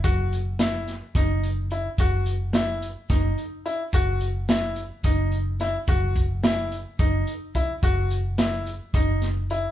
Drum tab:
HH |xxxxxxx|xxxxxxx|xxxxxxx|xxxxxxx|
SD |--ooo--|--o-o--|--o---o|--o----|
BD |o---o--|o---o--|o---o--|oo--o-o|

HH |xxxxxxx|
SD |--o--o-|
BD |o---o--|